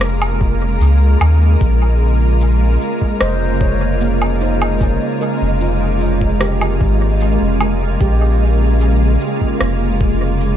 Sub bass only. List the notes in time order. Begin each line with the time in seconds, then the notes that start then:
Already playing: F1
0.81 C#2
1.21 D#2
1.61 A#1
3.21 F1
5.42 F1
6.81 G#1
7.41 F1
8.01 A#1
9.61 F1